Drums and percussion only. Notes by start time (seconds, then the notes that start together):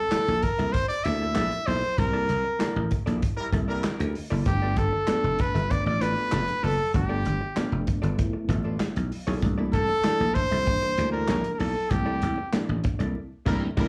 0.11 snare, clap, closed hi-hat
0.42 kick, closed hi-hat
0.59 closed hi-hat
0.74 kick, closed hi-hat
1.05 closed hi-hat
1.35 snare, clap, closed hi-hat
1.52 closed hi-hat
1.67 open hi-hat
1.98 kick, closed hi-hat
2.29 closed hi-hat
2.60 snare, clap, closed hi-hat
2.91 kick, closed hi-hat
3.07 closed hi-hat
3.22 kick, closed hi-hat
3.53 kick, closed hi-hat
3.84 snare, clap, closed hi-hat
4.00 closed hi-hat
4.15 open hi-hat
4.46 kick, closed hi-hat
4.77 kick, closed hi-hat
5.08 snare, clap, closed hi-hat
5.39 kick, closed hi-hat
5.56 closed hi-hat
5.70 kick, closed hi-hat
6.01 closed hi-hat
6.32 snare, clap, closed hi-hat
6.48 closed hi-hat
6.64 open hi-hat
6.94 kick, closed hi-hat
7.25 closed hi-hat
7.57 snare, clap, closed hi-hat
7.87 kick, closed hi-hat
8.03 closed hi-hat
8.19 kick, closed hi-hat
8.49 kick, closed hi-hat
8.80 snare, clap, closed hi-hat
8.96 closed hi-hat
9.12 open hi-hat
9.42 kick, closed hi-hat
9.73 kick, closed hi-hat
10.04 snare, clap, closed hi-hat
10.35 kick, closed hi-hat
10.52 closed hi-hat
10.67 kick, closed hi-hat
10.98 closed hi-hat
11.28 snare, clap, closed hi-hat
11.44 closed hi-hat
11.60 open hi-hat
11.91 kick, closed hi-hat
12.22 closed hi-hat
12.53 snare, clap, closed hi-hat
12.84 kick, closed hi-hat
13.00 closed hi-hat
13.46 kick, snare, crash
13.77 kick, snare, crash